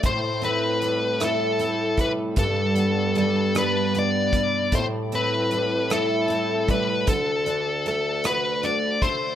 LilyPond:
<<
  \new Staff \with { instrumentName = "Lead electric guitar" } { \time 6/8 \key a \dorian \tempo 4. = 51 c''8 b'4 a'4 b'8 | a'4 a'8 b'8 d''4 | c''8 b'4 a'4 b'8 | a'4 a'8 b'8 d''8 c''8 | }
  \new Staff \with { instrumentName = "Steel-string acoustic guitar" } { \time 6/8 \key a \dorian a,8 c'8 g8 e'8 c'8 g8 | g,8 b8 g8 d'8 b8 g8 | a,8 c'8 g8 e'8 c'8 g8 | d8 d'8 a8 fis'8 d'8 a8 | }
  \new Staff \with { instrumentName = "Bassoon" } { \clef bass \time 6/8 \key a \dorian a,2. | g,2~ g,8 r8 | a,2. | d,2~ d,8 r8 | }
  \new DrumStaff \with { instrumentName = "Drums" } \drummode { \time 6/8 <hh bd>8 hh8 hh8 <hh ss>8 hh8 <hh bd>8 | <hh bd>8 hh8 hh8 <hh ss>8 hh8 <hh bd>8 | <hh bd>8 hh8 hh8 <hh ss>8 hh8 <hh bd>8 | <hh bd>8 hh8 <hh ss>8 <hh ss>8 hh8 <hh bd>8 | }
>>